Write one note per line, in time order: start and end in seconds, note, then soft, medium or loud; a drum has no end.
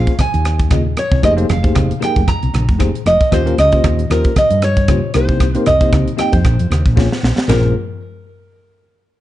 0.00 0.12 A#3 medium
0.00 0.11 C#4 medium
0.00 0.12 F4 medium
0.00 0.12 G#4 medium
0.00 0.12 C5 medium
0.00 0.20 F5 medium
0.07 kick medium
0.07 closed hi-hat soft
0.19 0.26 G#4 soft
0.19 0.26 C5 soft
0.19 1.00 G#5 medium
0.19 muted fretless electric bass stroke soft
0.19 kick medium
0.19 cross-stick medium
0.19 closed hi-hat medium
0.19 muted conga soft
0.19 high conga medium
0.34 0.95 D#2 medium
0.34 closed hi-hat soft
0.45 cross-stick medium
0.45 closed hi-hat medium
0.59 kick medium
0.59 closed hi-hat soft
0.71 0.81 A#3 medium
0.71 0.81 C#4 medium
0.71 0.82 F4 medium
0.71 0.82 G#4 medium
0.71 0.82 D#5 medium
0.71 kick loud
0.71 cross-stick medium
0.71 closed hi-hat medium
0.71 high conga medium
0.87 0.92 D#5 soft
0.97 1.24 C#5 medium
0.97 cross-stick medium
0.97 closed hi-hat medium
1.12 1.21 C2 medium
1.12 kick medium
1.23 1.44 F1 loud
1.23 1.33 A#3 medium
1.23 1.33 D#4 medium
1.23 1.33 G4 medium
1.23 1.33 G#4 medium
1.23 1.34 C5 medium
1.23 1.32 D#5 medium
1.23 kick medium
1.23 cross-stick medium
1.23 closed hi-hat medium
1.23 muted conga soft
1.37 1.45 A#3 medium
1.37 1.46 D#4 medium
1.37 1.46 G4 medium
1.37 1.46 G#4 medium
1.37 1.46 C5 medium
1.37 closed hi-hat soft
1.48 1.90 F1 medium
1.48 1.56 G#4 soft
1.48 1.56 A#4 soft
1.48 1.98 F5 medium
1.48 cross-stick medium
1.48 closed hi-hat soft
1.48 muted conga soft
1.48 low conga medium
1.63 1.91 A#3 medium
1.63 1.91 D#4 medium
1.63 1.90 G4 medium
1.63 1.91 G#4 medium
1.63 1.91 C5 medium
1.63 kick medium
1.63 closed hi-hat soft
1.75 kick loud
1.75 cross-stick medium
1.75 closed hi-hat medium
1.75 high conga medium
1.91 closed hi-hat soft
2.00 2.20 A#3 medium
2.00 2.20 D#4 medium
2.00 2.20 G4 medium
2.00 2.20 G#4 medium
2.00 2.21 A#4 medium
2.00 2.27 G5 medium
2.00 muted fretless electric bass stroke soft
2.00 cross-stick medium
2.00 closed hi-hat medium
2.00 muted conga soft
2.16 2.25 F1 medium
2.16 kick medium
2.16 closed hi-hat soft
2.27 2.34 G#4 soft
2.27 2.35 D#5 soft
2.27 3.07 A#5 medium
2.27 kick medium
2.27 cross-stick medium
2.27 closed hi-hat medium
2.27 muted conga soft
2.27 low conga medium
2.43 2.52 C2 medium
2.43 closed hi-hat soft
2.54 2.65 A#1 medium
2.54 cross-stick medium
2.54 closed hi-hat medium
2.54 high conga medium
2.69 2.89 F1 medium
2.69 kick medium
2.69 closed hi-hat soft
2.79 2.89 A#3 medium
2.79 2.90 D#4 medium
2.79 2.90 G4 medium
2.79 2.90 G#4 medium
2.79 2.90 C5 medium
2.79 kick medium
2.79 cross-stick medium
2.79 closed hi-hat medium
2.79 high conga medium
2.95 closed hi-hat soft
3.06 3.17 F1 medium
3.06 3.33 D#5 medium
3.06 cross-stick medium
3.06 closed hi-hat medium
3.21 muted fretless electric bass stroke soft
3.21 kick medium
3.21 closed hi-hat soft
3.32 3.53 D#2 loud
3.32 3.42 A#3 medium
3.32 3.42 C#4 medium
3.32 3.42 F4 medium
3.32 3.42 G4 medium
3.32 3.42 C5 medium
3.32 3.60 C5 loud
3.32 kick medium
3.32 cross-stick medium
3.32 closed hi-hat medium
3.32 muted conga soft
3.46 3.54 A#3 medium
3.46 3.54 C#4 medium
3.46 3.55 F4 medium
3.46 3.54 G4 medium
3.46 3.55 A#4 loud
3.46 closed hi-hat soft
3.58 3.78 C#2 medium
3.58 3.65 G4 soft
3.58 3.65 D#5 soft
3.58 4.07 D#5 medium
3.58 cross-stick medium
3.58 closed hi-hat medium
3.58 muted conga soft
3.72 4.00 A#3 medium
3.72 4.00 C#4 medium
3.72 4.00 F4 medium
3.72 4.00 G4 medium
3.72 4.01 C5 medium
3.72 kick medium
3.72 closed hi-hat soft
3.84 4.05 D#2 medium
3.84 kick loud
3.84 cross-stick medium
3.84 closed hi-hat medium
3.84 high conga medium
3.99 closed hi-hat soft
4.10 4.21 D#2 medium
4.10 4.30 A#3 medium
4.10 4.30 C#4 medium
4.10 4.30 F4 medium
4.10 4.30 G4 medium
4.10 4.35 A#4 medium
4.10 4.30 C5 medium
4.10 cross-stick medium
4.10 closed hi-hat medium
4.10 muted conga soft
4.24 kick medium
4.24 closed hi-hat soft
4.36 4.44 C5 soft
4.36 4.62 D#5 medium
4.36 muted fretless electric bass stroke soft
4.36 kick medium
4.36 cross-stick medium
4.36 closed hi-hat medium
4.36 muted conga soft
4.36 high conga medium
4.51 5.01 G2 medium
4.51 closed hi-hat soft
4.62 5.15 C#5 medium
4.62 cross-stick medium
4.62 closed hi-hat medium
4.77 kick medium
4.77 closed hi-hat soft
4.88 4.99 A#3 medium
4.88 4.99 C#4 medium
4.88 4.99 F4 medium
4.88 4.99 G4 medium
4.88 4.99 C5 medium
4.88 kick loud
4.88 cross-stick medium
4.88 closed hi-hat medium
4.88 high conga medium
5.14 5.55 C2 medium
5.14 5.46 A#3 medium
5.14 5.46 C4 medium
5.14 5.46 D#4 medium
5.14 5.47 G4 medium
5.14 5.47 C5 medium
5.14 5.58 C5 medium
5.14 cross-stick medium
5.14 closed hi-hat medium
5.29 kick medium
5.40 kick medium
5.40 cross-stick medium
5.40 closed hi-hat medium
5.40 muted conga soft
5.55 5.63 A#3 medium
5.55 5.63 C4 medium
5.55 5.63 D#4 medium
5.55 5.63 G4 medium
5.55 5.69 A#4 medium
5.55 5.64 C5 loud
5.55 closed hi-hat soft
5.66 6.07 C2 medium
5.66 5.73 G4 soft
5.66 5.74 C5 soft
5.66 6.15 D#5 medium
5.66 cross-stick medium
5.66 closed hi-hat medium
5.66 muted conga soft
5.66 low conga medium
5.80 6.08 A#3 medium
5.80 6.08 C4 medium
5.80 6.08 D#4 medium
5.80 6.08 G4 medium
5.80 6.09 C5 medium
5.80 kick medium
5.80 closed hi-hat soft
5.93 kick loud
5.93 cross-stick medium
5.93 closed hi-hat medium
5.93 high conga medium
6.08 closed hi-hat soft
6.17 6.37 A#3 medium
6.17 6.37 C4 medium
6.17 6.37 D#4 medium
6.17 6.37 G4 medium
6.17 6.38 D#5 medium
6.17 6.33 G5 medium
6.17 muted fretless electric bass stroke soft
6.17 cross-stick medium
6.17 closed hi-hat medium
6.32 6.42 F2 medium
6.32 7.19 C5 medium
6.32 kick medium
6.32 closed hi-hat soft
6.44 6.56 A#1 medium
6.44 6.52 G#4 soft
6.44 6.52 C5 soft
6.44 kick medium
6.44 cross-stick medium
6.44 closed hi-hat medium
6.44 muted conga soft
6.44 low conga medium
6.59 6.69 F2 medium
6.59 closed hi-hat soft
6.70 6.82 D#2 medium
6.70 cross-stick medium
6.70 closed hi-hat medium
6.70 high conga medium
6.86 7.06 A#1 medium
6.86 kick medium
6.86 closed hi-hat soft
6.96 7.07 A#3 medium
6.96 7.07 C#4 medium
6.96 7.07 F4 medium
6.96 7.07 G#4 medium
6.96 7.07 C#5 medium
6.96 kick loud
6.96 snare medium
6.96 high conga medium
7.12 snare medium
7.23 7.35 A#1 medium
7.23 snare medium
7.37 muted fretless electric bass stroke soft
7.37 snare medium
7.48 7.73 A#1 medium
7.48 7.74 A#3 medium
7.48 7.74 C#4 medium
7.48 7.74 F4 medium
7.48 7.74 G#4 medium
7.48 7.73 A#4 medium
7.48 7.74 C5 medium
7.48 snare loud
7.48 floor tom loud
7.48 ride bell medium
7.48 muted conga medium